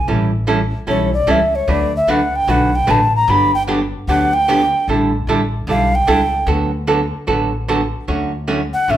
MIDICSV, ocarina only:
0, 0, Header, 1, 2, 480
1, 0, Start_track
1, 0, Key_signature, 2, "major"
1, 0, Tempo, 400534
1, 81, Time_signature, 4, 2, 24, 8
1, 10750, End_track
2, 0, Start_track
2, 0, Title_t, "Ocarina"
2, 0, Program_c, 0, 79
2, 1073, Note_on_c, 0, 73, 80
2, 1351, Note_off_c, 0, 73, 0
2, 1359, Note_on_c, 0, 74, 88
2, 1568, Note_on_c, 0, 76, 88
2, 1586, Note_off_c, 0, 74, 0
2, 1861, Note_on_c, 0, 73, 91
2, 1879, Note_off_c, 0, 76, 0
2, 2044, Note_on_c, 0, 74, 89
2, 2062, Note_off_c, 0, 73, 0
2, 2344, Note_off_c, 0, 74, 0
2, 2354, Note_on_c, 0, 76, 93
2, 2514, Note_on_c, 0, 78, 84
2, 2532, Note_off_c, 0, 76, 0
2, 2824, Note_on_c, 0, 79, 104
2, 2842, Note_off_c, 0, 78, 0
2, 2995, Note_on_c, 0, 78, 90
2, 3013, Note_off_c, 0, 79, 0
2, 3300, Note_on_c, 0, 79, 102
2, 3318, Note_off_c, 0, 78, 0
2, 3481, Note_on_c, 0, 81, 91
2, 3499, Note_off_c, 0, 79, 0
2, 3779, Note_off_c, 0, 81, 0
2, 3786, Note_on_c, 0, 82, 102
2, 3955, Note_on_c, 0, 83, 105
2, 3973, Note_off_c, 0, 82, 0
2, 4241, Note_off_c, 0, 83, 0
2, 4248, Note_on_c, 0, 79, 111
2, 4343, Note_off_c, 0, 79, 0
2, 4894, Note_on_c, 0, 78, 93
2, 5196, Note_on_c, 0, 79, 119
2, 5214, Note_off_c, 0, 78, 0
2, 5840, Note_off_c, 0, 79, 0
2, 6835, Note_on_c, 0, 77, 93
2, 7133, Note_on_c, 0, 79, 112
2, 7151, Note_off_c, 0, 77, 0
2, 7768, Note_off_c, 0, 79, 0
2, 10467, Note_on_c, 0, 78, 91
2, 10672, Note_on_c, 0, 76, 102
2, 10690, Note_off_c, 0, 78, 0
2, 10750, Note_off_c, 0, 76, 0
2, 10750, End_track
0, 0, End_of_file